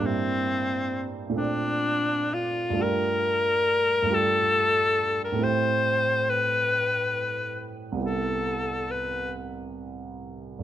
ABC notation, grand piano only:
X:1
M:6/8
L:1/8
Q:3/8=46
K:Gmix
V:1 name="Grand piano"
[G,,G,_B,DE]3 [_B,,A,CDF]3 | [G,,A,DFG]3 [G,,A,DFG]3 | [A,,A,CEG]6 | [C,,G,B,EG]6 |]